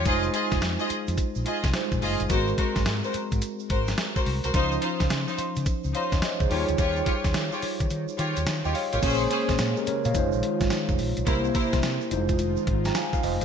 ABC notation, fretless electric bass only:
X:1
M:4/4
L:1/16
Q:"Swing 16ths" 1/4=107
K:Fm
V:1 name="Fretless electric bass" clef=bass
F,,,2 z F,,, F,, z2 F,, z B,,, z C,, z B,,, _G,,, =G,,, | A,,,2 z A,,, A,, z2 A,, z2 A,,,2 z2 C,, C,, | D,,2 z D,, D, z2 D, z D,, z E,, z D,, E,, =D,, | E,,2 z E,, E, z2 E, E, z E, E,, E, E,, z =A,,, |
B,,,2 z B,,, B,, z2 B,, F,,, B,,, z A,,, z F,,, B,,, =B,,, | C,,2 z C,, C, z F,,,4 A,,,2 z2 F,,, =A,,, |]